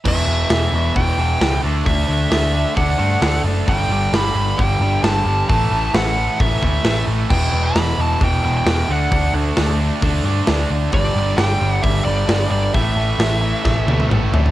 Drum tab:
CC |x---------------|----------------|----------------|----------------|
HH |----o---o---o---|o---o---o---o---|o---o---o---o---|o---o---o---o---|
SD |----o-------o---|----o-------o---|----o-------o---|----o-------o---|
T1 |----------------|----------------|----------------|----------------|
T2 |----------------|----------------|----------------|----------------|
FT |----------------|----------------|----------------|----------------|
BD |o-------o-------|o-------o-------|o-------o-------|o-------o-o-----|

CC |x---------------|----------------|----------------|----------------|
HH |----o---o---o---|o---o---o---o---|o---o---o---o---|o---o-----------|
SD |----o-------o---|----o-------o---|----o-------o---|----o---o-------|
T1 |----------------|----------------|----------------|----------oo----|
T2 |----------------|----------------|----------------|------------o---|
FT |----------------|----------------|----------------|--------------oo|
BD |o-------o-------|o-------o-------|o-------o-------|o-------o-------|